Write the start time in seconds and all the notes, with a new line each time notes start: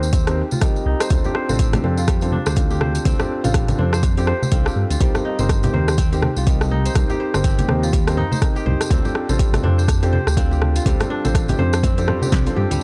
Already playing: D#2 G3 C4 D#4 F4 G4 C5
0.03 tambourine
0.13 C4, kick, closed hi-hat, tambourine, low conga
0.27 C4 D#4 G4 A#4 C5, cross-stick, closed hi-hat, tambourine, muted conga
0.51 F4, tambourine, high conga
0.61 G3 C4 D#4 G4 A#4 D#5, kick, cross-stick, closed hi-hat, tambourine
0.76 tambourine, muted conga
0.86 C2 D#4
1.00 C5, cross-stick, closed hi-hat, tambourine
1.10 D2 C4 D4 F4 A4 C5, kick, closed hi-hat, tambourine, muted conga, high conga
1.24 G4, tambourine, low conga
1.35 C5, cross-stick
1.49 A1 C4 D4 F4 A4 C5, tambourine, muted conga, high conga
1.59 C4, kick, closed hi-hat, tambourine
1.73 G4, cross-stick, closed hi-hat, tambourine, high conga, low conga
1.84 F2 C4 D4 F4 A4 C5, muted conga, high conga
1.97 F4, tambourine
2.08 G3, kick, cross-stick, closed hi-hat, tambourine
2.21 C4 D4 F4 A4 C5, closed hi-hat, tambourine, muted conga
2.32 D4, high conga
2.46 D2 C5, cross-stick, tambourine
2.56 C4 D4 F4 A4 F5, kick, closed hi-hat, tambourine
2.71 G4, tambourine, muted conga
2.81 C5, cross-stick, high conga
2.95 closed hi-hat, tambourine
3.05 D2 C4 D4 F4 A4 C5, kick, closed hi-hat, tambourine, muted conga, high conga
3.20 G4, cross-stick, tambourine, low conga
3.44 A1 C4 D4 F4 A4 C5, closed hi-hat, tambourine, muted conga, high conga
3.54 G3, kick, cross-stick, closed hi-hat
3.68 closed hi-hat, tambourine, high conga, low conga
3.78 F2 C4 D4 F4 A4 C5, muted conga, high conga
3.93 C5, cross-stick, tambourine
4.03 kick, closed hi-hat, tambourine, low conga
4.17 C4 D4 F4 G4 A4 C5, closed hi-hat, tambourine, muted conga
4.27 C5, cross-stick
4.42 tambourine, high conga
4.52 C2 C4 D4 F4 A4 F5, kick, closed hi-hat, tambourine
4.66 G4, cross-stick, tambourine, muted conga
4.76 G2
4.90 D2 F4, closed hi-hat, tambourine
5.00 C2 G3 C4 D#4 G4 A#4 C5, kick, closed hi-hat, muted conga, high conga
5.15 cross-stick, tambourine, low conga
5.25 D#4
5.39 G1 C4 D#4 G4 A#4 C5, tambourine, muted conga, high conga
5.49 kick, cross-stick, closed hi-hat, tambourine
5.63 G4, closed hi-hat, tambourine, high conga, low conga
5.73 D#2 C4 D#4 G4 A#4 C5, mid tom, muted conga, high conga
5.88 cross-stick, tambourine
5.98 C4, kick, closed hi-hat, tambourine
6.12 C4 D#4 G4 A#4 C5, closed hi-hat, tambourine, muted conga
6.22 cross-stick, high conga
6.36 C2 F4, tambourine
6.46 G3 C4 D#4 G4 A#4 D#5, kick, closed hi-hat, tambourine
6.61 cross-stick, tambourine, muted conga
6.71 D#4, high conga
6.85 C5, closed hi-hat, tambourine
6.94 C2 C4 D#4 G4 A#4 C5, kick, cross-stick, closed hi-hat, tambourine, muted conga, high conga
7.10 G4, tambourine, low conga
7.20 C5
7.34 G1 C4 D#4 G4 A#4 C5, cross-stick, tambourine, muted conga
7.44 C4, kick, closed hi-hat, tambourine
7.58 G4, closed hi-hat, tambourine, high conga, low conga
7.68 D#2 C4 D#4 G4 A#4 C5, cross-stick, muted conga, high conga
7.83 F4, tambourine
7.93 G3, kick, closed hi-hat, tambourine, low conga
8.07 C4 D#4 G4 A#4 C5, cross-stick, closed hi-hat, tambourine, muted conga
8.17 D#4, mid tom
8.32 C5, tambourine, high conga
8.42 C4 D#4 G4 A#4 D#5, kick, cross-stick, closed hi-hat, tambourine
8.55 G4, tambourine, muted conga
8.66 C2 C5, mid tom, high conga
8.81 cross-stick, closed hi-hat, tambourine
8.90 D2 C4 D4 F4 A4 C5, kick, closed hi-hat, muted conga, high conga
9.05 G4, tambourine, low conga
9.15 cross-stick
9.29 A1 C4 D4 F4 A4 C5, tambourine, muted conga, high conga
9.39 G3, kick, closed hi-hat, tambourine
9.53 cross-stick, closed hi-hat, tambourine, high conga, low conga
9.63 F2 C4 D4 F4 A4 C5, mid tom, muted conga, high conga
9.78 C5, tambourine
9.88 kick, cross-stick, closed hi-hat, tambourine
10.02 C4 D4 F4 G4 A4 C5, closed hi-hat, tambourine, muted conga
10.13 C5, high conga
10.27 D2, cross-stick, tambourine
10.37 C4 D4 F4 A4 F5, kick, closed hi-hat, tambourine
10.51 G4, tambourine, muted conga
10.61 cross-stick, high conga
10.76 F4, closed hi-hat, tambourine
10.86 D2 G3 C4 D4 F4 A4 C5, kick, closed hi-hat, tambourine, muted conga, high conga
11.00 cross-stick, closed hi-hat, tambourine, low conga
11.10 D4
11.24 A1 C4 D4 F4 A4 C5, closed hi-hat, tambourine, muted conga, high conga
11.35 kick, cross-stick, closed hi-hat, tambourine
11.48 G4, closed hi-hat, tambourine, high conga, low conga
11.59 F2 C4 D4 F4 A4 C5, muted conga, high conga
11.73 cross-stick, closed hi-hat, tambourine
11.83 C4, kick, closed hi-hat, tambourine, low conga
11.97 C4 D4 F4 G4 A4 C5, closed hi-hat, tambourine, muted conga
12.08 G3 C4 D4 F4 A4 C5, cross-stick, mid tom
12.22 C4 D4 F4 G4 A4 C5, tambourine, high conga
12.32 C2 G4, kick, snare, closed hi-hat, tambourine
12.46 C4 D4 F4 A4 C5, closed hi-hat, high tom, tambourine, muted conga
12.57 G2 G4, mid tom
12.71 D2 G3, closed hi-hat, mid tom, tambourine